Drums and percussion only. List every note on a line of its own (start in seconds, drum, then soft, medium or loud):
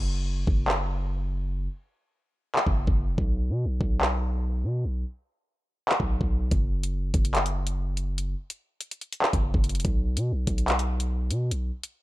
0.47 kick loud
0.68 clap loud
2.55 clap loud
2.67 kick medium
2.87 kick loud
3.18 kick loud
3.81 kick loud
4.01 clap loud
5.89 clap loud
6.00 kick medium
6.21 kick medium
6.51 kick loud
6.51 closed hi-hat medium
6.83 closed hi-hat medium
7.14 kick loud
7.14 closed hi-hat medium
7.25 closed hi-hat medium
7.35 clap loud
7.35 closed hi-hat medium
7.46 closed hi-hat medium
7.67 closed hi-hat medium
7.97 closed hi-hat medium
8.18 closed hi-hat medium
8.50 closed hi-hat medium
8.81 closed hi-hat medium
8.91 closed hi-hat medium
9.01 closed hi-hat soft
9.12 closed hi-hat medium
9.22 clap loud
9.33 kick medium
9.33 closed hi-hat medium
9.54 kick medium
9.64 closed hi-hat medium
9.64 open hi-hat medium
9.69 closed hi-hat medium
9.75 closed hi-hat medium
9.80 closed hi-hat medium
9.85 kick loud
9.85 closed hi-hat medium
10.17 closed hi-hat medium
10.47 kick loud
10.47 closed hi-hat medium
10.58 closed hi-hat medium
10.68 clap loud
10.68 closed hi-hat medium
10.79 closed hi-hat medium
11.00 closed hi-hat medium
11.31 closed hi-hat medium
11.51 closed hi-hat medium
11.83 closed hi-hat medium